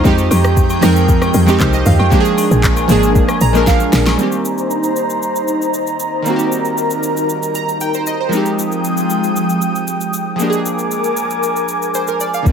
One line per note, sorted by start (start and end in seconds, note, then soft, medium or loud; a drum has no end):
0.00 0.67 F3 medium
0.00 2.08 D#4 medium
0.04 0.29 F2 loud
0.04 0.67 G#3 medium
0.04 2.10 G#3 medium
0.04 0.68 C4 medium
0.04 0.68 D#4 medium
0.04 0.69 G4 loud
0.04 2.10 G5 medium
0.04 kick loud
0.04 shaker medium
0.18 shaker medium
0.31 0.79 F2 loud
0.31 open hi-hat medium
0.31 high agogo medium
0.31 shaker loud
0.44 cross-stick loud
0.44 shaker soft
0.57 kick loud
0.57 shaker medium
0.70 high agogo medium
0.70 shaker medium
0.81 1.30 F2 loud
0.81 1.33 F3 medium
0.81 1.34 G#3 medium
0.81 1.34 C4 medium
0.81 1.35 D#4 medium
0.81 1.35 A#4 medium
0.81 cross-stick loud
0.81 open hi-hat medium
0.81 shaker medium
0.96 shaker medium
1.09 kick loud
1.09 shaker medium
1.22 cross-stick medium
1.22 high agogo medium
1.22 shaker medium
1.34 1.58 F2 medium
1.34 open hi-hat medium
1.34 shaker medium
1.46 1.99 F3 medium
1.46 1.99 G#3 medium
1.46 2.00 C4 medium
1.46 2.00 D#4 medium
1.46 2.01 G4 loud
1.46 high agogo medium
1.46 shaker medium
1.60 1.84 C2 loud
1.60 1.73 C5 medium
1.60 kick loud
1.60 clap loud
1.60 shaker medium
1.73 1.86 D#5 medium
1.73 shaker medium
1.86 1.98 D#2 medium
1.86 1.99 F5 medium
1.86 mid tom loud
1.86 open hi-hat medium
1.86 shaker medium
1.99 2.11 F2 medium
1.99 2.24 G5 medium
1.99 high agogo medium
2.10 2.74 F3 medium
2.10 2.74 G#3 medium
2.10 2.75 A#3 medium
2.10 4.17 D4 medium
2.10 2.75 D4 medium
2.10 2.20 G4 medium
2.10 4.17 A#4 medium
2.10 4.17 G#5 medium
2.10 kick loud
2.10 shaker medium
2.20 2.79 G#4 medium
2.25 shaker medium
2.38 open hi-hat medium
2.38 high agogo medium
2.38 shaker loud
2.51 2.86 A#1 loud
2.51 shaker soft
2.64 kick medium
2.64 clap loud
2.64 shaker medium
2.76 high agogo medium
2.76 shaker medium
2.88 3.25 G#1 medium
2.88 3.40 F3 medium
2.88 3.41 G#3 medium
2.88 3.41 A#3 medium
2.88 3.42 D4 medium
2.88 3.42 G#4 loud
2.88 open hi-hat medium
2.88 shaker loud
3.03 shaker medium
3.15 kick loud
3.15 shaker medium
3.29 cross-stick medium
3.29 high agogo medium
3.29 shaker medium
3.41 3.89 A#1 medium
3.41 3.65 A#5 medium
3.41 open hi-hat soft
3.41 shaker medium
3.53 4.06 F3 medium
3.53 4.06 G#3 medium
3.53 4.07 A#3 medium
3.53 4.07 D4 medium
3.53 4.08 A#4 loud
3.53 high agogo medium
3.53 shaker medium
3.67 4.15 F5 medium
3.67 kick loud
3.67 snare medium
3.67 shaker medium
3.80 shaker medium
3.93 4.17 A#1 medium
3.93 snare loud
3.93 open hi-hat medium
3.93 shaker loud
4.06 snare loud
4.06 high agogo medium
4.06 shaker medium
4.15 6.20 D#3 medium
4.15 6.21 G3 medium
4.15 6.22 A#3 medium
4.15 8.29 D#4 medium
4.15 6.24 C5 medium
4.15 8.29 A#5 medium
4.15 shaker medium
4.21 6.23 C4 medium
4.21 6.24 G4 medium
4.32 shaker medium
4.45 shaker medium
4.58 shaker soft
4.71 shaker medium
4.83 shaker medium
4.96 shaker medium
5.10 shaker soft
5.22 shaker medium
5.36 shaker medium
5.48 shaker medium
5.62 shaker soft
5.74 shaker medium
5.87 shaker soft
6.00 shaker medium
6.22 8.27 D#3 medium
6.22 8.28 G3 medium
6.22 8.29 A#3 medium
6.22 8.31 A#4 medium
6.22 shaker medium
6.28 8.30 C4 medium
6.28 6.34 F#4 medium
6.36 8.34 G4 medium
6.36 shaker medium
6.52 shaker medium
6.65 shaker soft
6.78 shaker medium
6.90 shaker medium
7.03 shaker medium
7.17 shaker medium
7.29 shaker medium
7.43 shaker medium
7.55 7.79 A#5 medium
7.55 shaker medium
7.69 shaker soft
7.81 8.05 G5 medium
7.81 shaker medium
7.94 8.06 C5 medium
7.94 shaker medium
8.07 8.31 D#5 medium
8.07 shaker medium
8.20 8.45 C5 medium
8.29 10.34 F3 medium
8.29 10.37 F3 medium
8.29 10.35 G#3 medium
8.29 10.37 G#3 medium
8.29 10.36 C4 medium
8.29 10.37 G5 medium
8.29 10.37 D#6 medium
8.29 shaker medium
8.35 10.37 D#4 medium
8.35 10.38 G4 medium
8.46 shaker medium
8.59 shaker medium
8.72 shaker soft
8.84 shaker medium
8.97 shaker medium
9.10 shaker medium
9.24 shaker medium
9.36 shaker medium
9.49 shaker medium
9.62 shaker medium
9.75 shaker soft
9.88 shaker medium
10.01 shaker medium
10.13 shaker medium
10.36 12.41 F3 medium
10.36 12.42 G#3 medium
10.36 12.43 A#3 medium
10.36 12.44 A#4 medium
10.36 12.44 G#5 medium
10.36 12.44 D6 medium
10.36 shaker medium
10.42 12.44 D4 medium
10.42 10.48 G4 medium
10.50 12.48 G#4 medium
10.50 shaker medium
10.66 shaker medium
10.79 shaker soft
10.91 shaker medium
11.04 shaker medium
11.17 shaker medium
11.30 shaker medium
11.43 shaker medium
11.56 shaker medium
11.68 shaker medium
11.82 shaker soft
11.94 12.08 C5 medium
11.94 shaker medium
12.07 12.20 A#4 medium
12.07 shaker medium
12.20 12.33 D5 medium
12.20 shaker medium
12.34 12.52 F5 medium
12.34 shaker medium
12.43 12.52 C2 medium
12.43 12.52 D#3 medium
12.43 12.52 G3 medium
12.43 12.52 A#3 medium
12.43 12.52 C5 medium
12.43 12.52 A#5 medium
12.43 12.52 D#6 medium
12.43 shaker medium
12.48 12.52 C4 medium